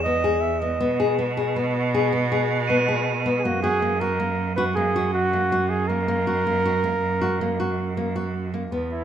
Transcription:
0.00 0.81 E2 medium
0.00 0.42 D#5 medium
0.00 0.88 E7 medium
0.06 0.22 B3 medium
0.24 0.56 G#4 medium
0.41 0.61 E5 medium
0.60 0.78 B3 medium
0.60 1.17 D#5 medium
0.80 3.46 B2 medium
0.80 0.97 B3 medium
1.00 1.16 G#4 medium
1.19 1.35 B3 medium
1.37 1.53 G#4 medium
1.56 1.88 B3 medium
1.94 2.10 G#4 medium
2.13 2.29 B3 medium
2.32 2.64 G#4 medium
2.67 2.86 B3 medium
2.67 3.59 D#7 medium
2.88 3.21 G#4 medium
3.26 3.42 B3 medium
3.39 3.45 G#4 medium
3.44 8.69 F#2 medium
3.44 3.61 A#3 medium
3.44 3.62 F#4 medium
3.63 3.80 F#4 medium
3.63 4.02 G#4 medium
3.82 3.98 A#3 medium
4.01 4.17 F#4 medium
4.01 4.56 A#4 medium
4.20 4.52 A#3 medium
4.56 4.74 F#4 medium
4.56 4.65 B4 medium
4.75 4.93 A#3 medium
4.75 5.11 G#4 medium
4.96 5.28 F#4 medium
5.13 5.71 F#4 medium
5.33 5.49 A#3 medium
5.52 5.84 F#4 medium
5.70 5.90 G#4 medium
5.88 6.06 A#3 medium
5.88 8.34 A#4 medium
6.08 6.25 A#3 medium
6.27 6.43 F#4 medium
6.47 6.63 A#3 medium
6.65 6.82 F#4 medium
6.84 7.16 A#3 medium
7.21 7.38 F#4 medium
7.41 7.57 A#3 medium
7.60 7.92 F#4 medium
7.97 8.13 A#3 medium
8.16 8.48 F#4 medium
8.54 8.70 A#3 medium
8.72 9.04 E2 medium
8.72 9.04 B3 medium
8.91 9.04 E4 medium

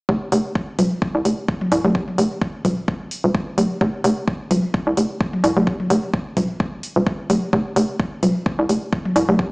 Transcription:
0.09 0.18 F1 loud
0.09 kick loud
0.32 0.41 F1 loud
0.32 open hi-hat medium
0.55 kick loud
0.79 0.88 D#1 medium
0.79 open hi-hat medium
0.79 high tom medium
1.02 kick loud
1.15 1.22 C2 medium
1.25 1.34 F1 medium
1.25 open hi-hat medium
1.48 kick loud
1.61 high tom medium
1.72 1.81 C2 medium
1.72 mid tom medium
1.72 open hi-hat medium
1.84 2.13 F1 medium
1.84 high tom medium
1.95 kick loud
2.08 high tom soft
2.18 2.27 F1 medium
2.18 open hi-hat medium
2.42 kick loud
2.65 3.02 D#1 medium
2.65 kick medium
2.65 open hi-hat loud
2.65 high tom medium
2.88 kick loud
3.01 3.08 C2 medium
3.11 open hi-hat medium
3.24 3.31 D#1 medium
3.35 kick loud
3.58 3.67 F1 medium
3.58 open hi-hat medium
3.58 high tom medium
3.81 3.90 F1 loud
3.81 kick loud
4.04 4.13 F1 loud
4.04 open hi-hat medium
4.28 kick loud
4.51 4.60 D#1 medium
4.51 open hi-hat medium
4.51 high tom medium
4.74 kick loud
4.87 4.94 C2 medium
4.97 5.06 F1 medium
4.97 open hi-hat medium
5.21 kick loud
5.33 high tom medium
5.44 5.53 C2 medium
5.44 mid tom medium
5.44 open hi-hat medium
5.57 5.85 F1 medium
5.57 high tom medium
5.67 kick loud
5.80 high tom medium
5.90 5.99 F1 loud
5.90 open hi-hat medium
6.14 kick loud
6.37 6.74 D#1 medium
6.37 kick medium
6.37 mid tom medium
6.37 open hi-hat medium
6.37 high tom medium
6.60 kick loud
6.73 6.80 C2 loud
6.83 open hi-hat medium
6.96 7.03 D#1 medium
7.07 kick loud
7.30 7.39 F1 medium
7.30 open hi-hat medium
7.30 high tom medium
7.53 7.62 F1 medium
7.53 kick loud
7.76 7.85 F1 loud
7.76 open hi-hat medium
8.00 kick loud
8.23 8.32 D#1 medium
8.23 open hi-hat medium
8.23 high tom medium
8.46 kick loud
8.59 8.66 C2 medium
8.69 8.78 F1 medium
8.69 open hi-hat medium
8.93 kick loud
9.05 high tom medium
9.16 9.25 C2 medium
9.16 mid tom medium
9.16 open hi-hat medium
9.29 9.52 F1 medium
9.29 high tom medium
9.39 kick loud

